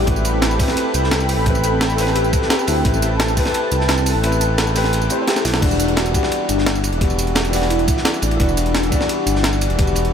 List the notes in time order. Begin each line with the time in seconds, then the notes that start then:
0.04 A1 A3 C4 E4 A4 G5 B5, kick, closed hi-hat, ride
0.09 G4 B4
0.16 tambourine
0.25 closed hi-hat, ride, tambourine
0.42 A4, snare, closed hi-hat, ride
0.51 tambourine
0.57 A3 C4 E4 B4, kick, open hi-hat, ride, tambourine
0.61 G4 B4
0.67 snare
0.77 closed hi-hat, ride
0.94 C2 E4, closed hi-hat, ride, tambourine
1.03 snare
1.11 snare, closed hi-hat, ride
1.20 tambourine
1.29 open hi-hat, ride, tambourine
1.38 A1
1.43 A3 C4 E4 B4, kick, closed hi-hat, ride
1.48 G4 B4
1.55 ride, tambourine
1.64 closed hi-hat, ride, tambourine
1.81 A4, snare, closed hi-hat, ride
1.90 tambourine
1.95 A3 C4 E4, snare, open hi-hat, ride, tambourine
2.00 G4 B4
2.07 snare
2.15 G4, closed hi-hat, ride
2.24 tambourine
2.33 kick, closed hi-hat, ride, tambourine
2.42 snare
2.49 G4, snare, closed hi-hat, ride
2.59 tambourine
2.67 D2 E4, open hi-hat, ride, tambourine
2.76 ride
2.82 A1 A3 C4 E4 A5, kick, closed hi-hat
2.86 G4 B4, ride
2.94 tambourine
3.02 closed hi-hat, ride, tambourine
3.20 A4, snare, closed hi-hat, ride
3.28 tambourine
3.34 A3 C4 E4 B4, kick, open hi-hat, ride, tambourine
3.38 G4 B4
3.45 snare
3.54 closed hi-hat, ride
3.72 C2 E4, closed hi-hat, ride, tambourine
3.81 snare
3.88 snare, closed hi-hat, ride
3.98 tambourine
4.06 open hi-hat, ride, tambourine
4.15 A1
4.21 A3 C4 E4 B4, closed hi-hat, ride
4.25 G4 B4
4.32 ride, tambourine
4.41 closed hi-hat, ride, tambourine
4.58 A4, snare, closed hi-hat, ride
4.67 tambourine
4.74 A3 C4 E4 G4 B4, snare, open hi-hat, ride, tambourine
4.84 snare
4.93 G4, closed hi-hat, ride
5.02 tambourine
5.09 A3 C4 E4 G4 C5, closed hi-hat, ride, tambourine
5.16 A3 C4 E4
5.20 G4 C5
5.28 G4, snare, closed hi-hat, ride
5.36 snare, tambourine
5.45 B1 E4, snare, open hi-hat, ride, tambourine
5.54 snare
5.59 E1 E3 G3 B3 D4, kick, closed hi-hat, crash, ride
5.64 D4 F#4
5.71 tambourine
5.79 closed hi-hat, ride, tambourine
5.88 closed hi-hat
5.97 F#4, snare, closed hi-hat, ride
6.06 closed hi-hat, tambourine
6.11 E3 G3 B3 G4, kick, closed hi-hat, ride, tambourine
6.16 D4 F#4
6.23 snare
6.32 closed hi-hat, ride
6.49 G1 D4, closed hi-hat, ride, tambourine
6.58 snare
6.66 snare, closed hi-hat, ride
6.75 tambourine
6.84 closed hi-hat, ride, tambourine
6.92 E1, closed hi-hat
6.98 E3 G3 B3 G4, kick, closed hi-hat, ride
7.03 D4 F#4
7.10 ride, tambourine
7.19 closed hi-hat, ride, tambourine
7.27 closed hi-hat
7.35 F#4, snare, closed hi-hat, ride
7.45 closed hi-hat, tambourine
7.50 E3 G3 B3, open hi-hat, ride, tambourine
7.54 D4 F#4, snare
7.62 snare
7.70 E4, closed hi-hat, ride
7.79 closed hi-hat
7.88 kick, closed hi-hat, ride, tambourine
7.97 snare
8.05 E4, snare, closed hi-hat, ride
8.14 tambourine
8.22 A1 D4, closed hi-hat, ride, tambourine
8.31 closed hi-hat, ride
8.37 E1 E3 G3 B3 D4, kick, closed hi-hat
8.41 D4 F#4, ride
8.49 tambourine
8.57 closed hi-hat, ride, tambourine
8.66 closed hi-hat
8.75 F#4, snare, closed hi-hat, ride
8.83 closed hi-hat, tambourine
8.89 E3 G3 B3 G4, kick, closed hi-hat, ride, tambourine
8.93 D4 F#4
9.00 snare
9.09 closed hi-hat, ride
9.26 G1 D4, closed hi-hat, ride, tambourine
9.35 snare
9.43 snare, closed hi-hat, ride
9.53 tambourine
9.61 closed hi-hat, ride, tambourine
9.70 E1, closed hi-hat
9.76 E3 G3 B3 G4, kick, closed hi-hat, ride
9.80 D4 F#4
9.87 ride, tambourine
9.95 closed hi-hat, ride, tambourine
10.05 closed hi-hat